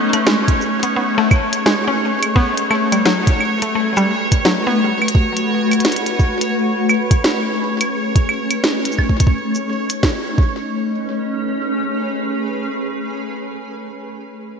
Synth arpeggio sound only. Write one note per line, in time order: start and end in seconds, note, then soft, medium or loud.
0.13 0.24 A3 medium
0.27 0.43 G#3 loud
0.83 0.95 B3 medium
0.96 1.13 B3 medium
1.18 1.28 A3 loud
1.66 1.76 G#3 medium
1.88 1.98 C#4 medium
2.36 2.53 B3 medium
2.71 2.88 A3 medium
2.92 3.03 G3 medium
3.06 3.22 F#3 loud
3.62 3.74 A3 medium
3.75 3.92 A3 medium
3.97 4.07 G3 loud
4.45 4.55 F#3 medium
4.67 4.77 B3 medium